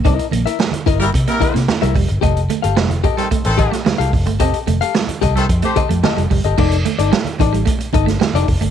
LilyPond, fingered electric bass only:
\new Staff \with { instrumentName = "Fingered electric bass" } { \clef bass \time 4/4 \key f \major \tempo 4 = 110 c,16 r16 bes,,16 r8. g,,8 c16 r8 c16 r16 c,16 f,,16 g,,16 | f,,8 r16 g,,16 f,,8 r8. a,,8 r8 c,16 f,,16 g,,16 | f,,16 r16 f,,16 r8. c,8 f,16 r8 f,16 r16 f,,16 f,,16 g,,16 | f,,8 r16 g,,16 r8 a,,8 r8 g,,8 r16 f,,16 f,,16 g,,16 | }